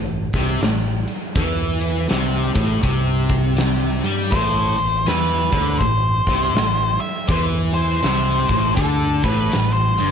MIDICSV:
0, 0, Header, 1, 5, 480
1, 0, Start_track
1, 0, Key_signature, 0, "minor"
1, 0, Tempo, 741656
1, 885, Time_signature, 4, 2, 24, 8
1, 6545, End_track
2, 0, Start_track
2, 0, Title_t, "Lead electric guitar"
2, 0, Program_c, 0, 29
2, 2791, Note_on_c, 0, 72, 92
2, 3286, Note_off_c, 0, 72, 0
2, 3289, Note_on_c, 0, 71, 78
2, 3742, Note_off_c, 0, 71, 0
2, 3745, Note_on_c, 0, 72, 98
2, 4531, Note_off_c, 0, 72, 0
2, 4534, Note_on_c, 0, 76, 103
2, 4713, Note_on_c, 0, 72, 87
2, 4724, Note_off_c, 0, 76, 0
2, 4795, Note_off_c, 0, 72, 0
2, 5011, Note_on_c, 0, 72, 87
2, 5661, Note_off_c, 0, 72, 0
2, 5664, Note_on_c, 0, 69, 93
2, 5980, Note_off_c, 0, 69, 0
2, 5982, Note_on_c, 0, 71, 78
2, 6293, Note_off_c, 0, 71, 0
2, 6296, Note_on_c, 0, 72, 83
2, 6545, Note_off_c, 0, 72, 0
2, 6545, End_track
3, 0, Start_track
3, 0, Title_t, "Distorted electric guitar"
3, 0, Program_c, 1, 30
3, 0, Note_on_c, 1, 45, 62
3, 164, Note_off_c, 1, 45, 0
3, 227, Note_on_c, 1, 48, 89
3, 401, Note_off_c, 1, 48, 0
3, 404, Note_on_c, 1, 45, 74
3, 644, Note_off_c, 1, 45, 0
3, 878, Note_on_c, 1, 52, 93
3, 1347, Note_off_c, 1, 52, 0
3, 1350, Note_on_c, 1, 48, 100
3, 1644, Note_off_c, 1, 48, 0
3, 1647, Note_on_c, 1, 45, 85
3, 1824, Note_off_c, 1, 45, 0
3, 1827, Note_on_c, 1, 48, 88
3, 2605, Note_off_c, 1, 48, 0
3, 2616, Note_on_c, 1, 55, 96
3, 2794, Note_off_c, 1, 55, 0
3, 2799, Note_on_c, 1, 45, 108
3, 3087, Note_off_c, 1, 45, 0
3, 3094, Note_on_c, 1, 45, 58
3, 3242, Note_off_c, 1, 45, 0
3, 3275, Note_on_c, 1, 52, 92
3, 3569, Note_off_c, 1, 52, 0
3, 3573, Note_on_c, 1, 50, 84
3, 3752, Note_off_c, 1, 50, 0
3, 3762, Note_on_c, 1, 45, 65
3, 4001, Note_off_c, 1, 45, 0
3, 4066, Note_on_c, 1, 48, 96
3, 4238, Note_off_c, 1, 48, 0
3, 4240, Note_on_c, 1, 45, 69
3, 4481, Note_off_c, 1, 45, 0
3, 4727, Note_on_c, 1, 52, 97
3, 5192, Note_off_c, 1, 52, 0
3, 5195, Note_on_c, 1, 48, 100
3, 5490, Note_off_c, 1, 48, 0
3, 5500, Note_on_c, 1, 45, 79
3, 5677, Note_off_c, 1, 45, 0
3, 5679, Note_on_c, 1, 50, 99
3, 5972, Note_off_c, 1, 50, 0
3, 5980, Note_on_c, 1, 45, 89
3, 6157, Note_off_c, 1, 45, 0
3, 6169, Note_on_c, 1, 45, 74
3, 6407, Note_off_c, 1, 45, 0
3, 6460, Note_on_c, 1, 43, 93
3, 6545, Note_off_c, 1, 43, 0
3, 6545, End_track
4, 0, Start_track
4, 0, Title_t, "Fingered electric bass"
4, 0, Program_c, 2, 33
4, 0, Note_on_c, 2, 33, 77
4, 199, Note_off_c, 2, 33, 0
4, 219, Note_on_c, 2, 36, 83
4, 389, Note_off_c, 2, 36, 0
4, 400, Note_on_c, 2, 33, 68
4, 680, Note_off_c, 2, 33, 0
4, 878, Note_on_c, 2, 40, 96
4, 1334, Note_off_c, 2, 40, 0
4, 1358, Note_on_c, 2, 36, 89
4, 1639, Note_off_c, 2, 36, 0
4, 1651, Note_on_c, 2, 33, 91
4, 1824, Note_off_c, 2, 33, 0
4, 1830, Note_on_c, 2, 36, 97
4, 2589, Note_off_c, 2, 36, 0
4, 2615, Note_on_c, 2, 43, 83
4, 2786, Note_off_c, 2, 43, 0
4, 2797, Note_on_c, 2, 33, 95
4, 3078, Note_off_c, 2, 33, 0
4, 3103, Note_on_c, 2, 33, 78
4, 3270, Note_off_c, 2, 33, 0
4, 3277, Note_on_c, 2, 40, 90
4, 3558, Note_off_c, 2, 40, 0
4, 3578, Note_on_c, 2, 38, 89
4, 3747, Note_off_c, 2, 38, 0
4, 3753, Note_on_c, 2, 33, 71
4, 4035, Note_off_c, 2, 33, 0
4, 4056, Note_on_c, 2, 36, 90
4, 4226, Note_off_c, 2, 36, 0
4, 4232, Note_on_c, 2, 33, 68
4, 4515, Note_off_c, 2, 33, 0
4, 4717, Note_on_c, 2, 40, 83
4, 5174, Note_off_c, 2, 40, 0
4, 5197, Note_on_c, 2, 36, 92
4, 5479, Note_off_c, 2, 36, 0
4, 5495, Note_on_c, 2, 33, 87
4, 5667, Note_off_c, 2, 33, 0
4, 5678, Note_on_c, 2, 38, 88
4, 5960, Note_off_c, 2, 38, 0
4, 5979, Note_on_c, 2, 33, 89
4, 6149, Note_off_c, 2, 33, 0
4, 6176, Note_on_c, 2, 33, 71
4, 6450, Note_off_c, 2, 33, 0
4, 6479, Note_on_c, 2, 31, 75
4, 6545, Note_off_c, 2, 31, 0
4, 6545, End_track
5, 0, Start_track
5, 0, Title_t, "Drums"
5, 215, Note_on_c, 9, 42, 56
5, 219, Note_on_c, 9, 36, 71
5, 280, Note_off_c, 9, 42, 0
5, 283, Note_off_c, 9, 36, 0
5, 396, Note_on_c, 9, 42, 75
5, 406, Note_on_c, 9, 38, 97
5, 460, Note_off_c, 9, 42, 0
5, 471, Note_off_c, 9, 38, 0
5, 697, Note_on_c, 9, 42, 52
5, 761, Note_off_c, 9, 42, 0
5, 876, Note_on_c, 9, 42, 80
5, 878, Note_on_c, 9, 36, 110
5, 940, Note_off_c, 9, 42, 0
5, 943, Note_off_c, 9, 36, 0
5, 1174, Note_on_c, 9, 42, 61
5, 1238, Note_off_c, 9, 42, 0
5, 1353, Note_on_c, 9, 42, 81
5, 1363, Note_on_c, 9, 38, 98
5, 1417, Note_off_c, 9, 42, 0
5, 1428, Note_off_c, 9, 38, 0
5, 1648, Note_on_c, 9, 42, 63
5, 1654, Note_on_c, 9, 36, 85
5, 1713, Note_off_c, 9, 42, 0
5, 1718, Note_off_c, 9, 36, 0
5, 1834, Note_on_c, 9, 36, 82
5, 1836, Note_on_c, 9, 42, 87
5, 1899, Note_off_c, 9, 36, 0
5, 1900, Note_off_c, 9, 42, 0
5, 2130, Note_on_c, 9, 42, 53
5, 2133, Note_on_c, 9, 36, 80
5, 2195, Note_off_c, 9, 42, 0
5, 2198, Note_off_c, 9, 36, 0
5, 2309, Note_on_c, 9, 42, 82
5, 2319, Note_on_c, 9, 38, 112
5, 2374, Note_off_c, 9, 42, 0
5, 2384, Note_off_c, 9, 38, 0
5, 2616, Note_on_c, 9, 42, 56
5, 2681, Note_off_c, 9, 42, 0
5, 2798, Note_on_c, 9, 36, 114
5, 2800, Note_on_c, 9, 42, 88
5, 2862, Note_off_c, 9, 36, 0
5, 2864, Note_off_c, 9, 42, 0
5, 3096, Note_on_c, 9, 42, 61
5, 3161, Note_off_c, 9, 42, 0
5, 3277, Note_on_c, 9, 42, 72
5, 3288, Note_on_c, 9, 38, 89
5, 3342, Note_off_c, 9, 42, 0
5, 3353, Note_off_c, 9, 38, 0
5, 3572, Note_on_c, 9, 42, 51
5, 3576, Note_on_c, 9, 36, 78
5, 3636, Note_off_c, 9, 42, 0
5, 3641, Note_off_c, 9, 36, 0
5, 3758, Note_on_c, 9, 36, 78
5, 3758, Note_on_c, 9, 42, 79
5, 3822, Note_off_c, 9, 36, 0
5, 3823, Note_off_c, 9, 42, 0
5, 4055, Note_on_c, 9, 42, 55
5, 4058, Note_on_c, 9, 36, 78
5, 4120, Note_off_c, 9, 42, 0
5, 4123, Note_off_c, 9, 36, 0
5, 4240, Note_on_c, 9, 42, 73
5, 4250, Note_on_c, 9, 38, 101
5, 4305, Note_off_c, 9, 42, 0
5, 4315, Note_off_c, 9, 38, 0
5, 4531, Note_on_c, 9, 42, 49
5, 4596, Note_off_c, 9, 42, 0
5, 4708, Note_on_c, 9, 42, 86
5, 4716, Note_on_c, 9, 36, 115
5, 4773, Note_off_c, 9, 42, 0
5, 4780, Note_off_c, 9, 36, 0
5, 5018, Note_on_c, 9, 42, 56
5, 5083, Note_off_c, 9, 42, 0
5, 5195, Note_on_c, 9, 42, 80
5, 5205, Note_on_c, 9, 38, 101
5, 5260, Note_off_c, 9, 42, 0
5, 5270, Note_off_c, 9, 38, 0
5, 5491, Note_on_c, 9, 42, 65
5, 5497, Note_on_c, 9, 36, 76
5, 5556, Note_off_c, 9, 42, 0
5, 5561, Note_off_c, 9, 36, 0
5, 5672, Note_on_c, 9, 42, 88
5, 5677, Note_on_c, 9, 36, 80
5, 5737, Note_off_c, 9, 42, 0
5, 5742, Note_off_c, 9, 36, 0
5, 5976, Note_on_c, 9, 42, 66
5, 5979, Note_on_c, 9, 36, 74
5, 6041, Note_off_c, 9, 42, 0
5, 6044, Note_off_c, 9, 36, 0
5, 6160, Note_on_c, 9, 42, 87
5, 6170, Note_on_c, 9, 38, 102
5, 6224, Note_off_c, 9, 42, 0
5, 6235, Note_off_c, 9, 38, 0
5, 6459, Note_on_c, 9, 42, 62
5, 6524, Note_off_c, 9, 42, 0
5, 6545, End_track
0, 0, End_of_file